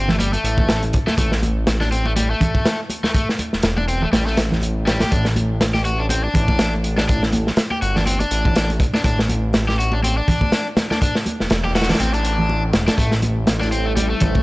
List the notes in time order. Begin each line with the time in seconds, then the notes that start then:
Already playing: G1
0.08 A3, snare, low conga
0.19 G3, closed hi-hat, high conga
0.33 A3, closed hi-hat, muted conga
0.44 A1, closed hi-hat
0.58 kick, high conga, low conga
0.69 snare, closed hi-hat
0.83 closed hi-hat, muted conga
0.93 kick, closed hi-hat
1.07 A3, snare, high conga
1.18 A1 A3, kick, closed hi-hat, muted conga
1.32 snare
1.42 closed hi-hat, high conga
1.67 snare, closed hi-hat, muted conga
1.80 D4, snare, high conga
1.92 C4, closed hi-hat
2.05 A3, muted conga
2.16 G3, closed hi-hat, high conga
2.30 A3
2.41 kick, closed hi-hat, low conga
2.54 kick, muted conga, high conga
2.66 snare, closed hi-hat
2.90 closed hi-hat, muted conga
3.04 A3, snare, high conga
3.15 A3, kick, closed hi-hat
3.29 snare
3.39 closed hi-hat, muted conga, high conga
3.53 E1, snare
3.63 E1, snare, closed hi-hat
3.77 D4, muted conga, high conga
3.88 C4, closed hi-hat
4.02 A3, low conga
4.13 A1 G3, snare, closed hi-hat, high conga
4.27 A3, snare, muted conga
4.37 snare, closed hi-hat
4.51 snare, high conga, low conga
4.62 closed hi-hat, muted conga
4.87 G3, snare, closed hi-hat
5.00 G4, snare, closed hi-hat, high conga
5.11 A1 D4, kick, closed hi-hat
5.25 snare, muted conga
5.36 closed hi-hat, high conga
5.61 snare, closed hi-hat, muted conga
5.74 G4, snare, high conga
5.85 F#4, closed hi-hat
6.00 D4
6.09 C4, closed hi-hat, muted conga, high conga
6.24 D4
6.34 A1, kick, closed hi-hat, low conga
6.48 kick, muted conga, high conga
6.59 snare, closed hi-hat
6.84 closed hi-hat
6.97 D4, snare, muted conga, high conga
7.09 D4, kick, closed hi-hat
7.23 snare
7.33 closed hi-hat, muted conga, high conga
7.47 snare
7.57 snare, closed hi-hat
7.71 G4, high conga
7.82 G1 F#4, closed hi-hat, muted conga
7.96 D4, snare, low conga
8.06 C4, closed hi-hat, high conga
8.20 D4, closed hi-hat, muted conga
8.31 A1, closed hi-hat
8.45 kick, high conga, low conga
8.56 snare, closed hi-hat
8.70 closed hi-hat, muted conga
8.80 kick, closed hi-hat
8.93 D4, snare, high conga
9.04 A1 D4, kick, closed hi-hat, muted conga
9.19 snare
9.29 closed hi-hat, high conga
9.53 snare, closed hi-hat, muted conga
9.68 G4, snare, high conga
9.79 F#4, closed hi-hat
9.92 D4, muted conga
10.03 C4, closed hi-hat, high conga
10.18 D4
10.28 kick, closed hi-hat, low conga
10.41 kick, muted conga, high conga
10.52 snare, closed hi-hat
10.77 snare, closed hi-hat, muted conga
10.91 D4, snare, high conga
11.02 D4, kick, closed hi-hat, noise sweep
11.15 snare
11.26 closed hi-hat, muted conga, high conga
11.40 E1, snare
11.50 E1, snare, closed hi-hat
11.65 G4, muted conga, high conga
11.75 F#4, snare, closed hi-hat
11.81 snare, closed hi-hat
11.89 D4, snare, closed hi-hat, low conga
11.94 snare, closed hi-hat
12.00 A1 C4, closed hi-hat, high conga
12.13 D4, closed hi-hat, muted conga
12.25 closed hi-hat
12.38 high conga, low conga
12.49 muted conga
12.73 E1, snare, closed hi-hat
12.88 D4, snare, closed hi-hat, high conga
12.98 A1 G3 A3 C4 E4 A4 C5, kick, closed hi-hat
13.12 snare, muted conga
13.22 closed hi-hat, high conga
13.47 snare, closed hi-hat, muted conga
13.61 D4, snare, high conga
13.72 C4, closed hi-hat
13.86 A3
13.96 G3, closed hi-hat, muted conga, high conga
14.10 A3
14.20 A1, kick, closed hi-hat, low conga
14.35 kick, muted conga, high conga